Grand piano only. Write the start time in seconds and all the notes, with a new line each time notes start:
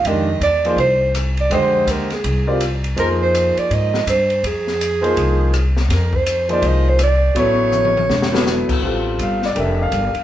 0.06 D#3 G#3 D4 G4 A#4
0.65 F3 A#3 D#4 G#4 C5
1.51 D3 G#3 G4 C5 D#5
2.47 G3 C4 F4 A#4 D5
2.96 F3 A#3 D#4 G#4 C5
5.01 F3 A#3 D#4 G#4 C5
6.49 F3 A#3 D#4 G#4 C5
7.35 F#3 B3 E4 A4 C#5
8.32 F#3 B3 E4 A4 B4
8.83 G3 C4 F4 A4
9.23 F5
9.45 D5
9.55 D4 G4 A4 A#4
9.60 E5
9.82 F5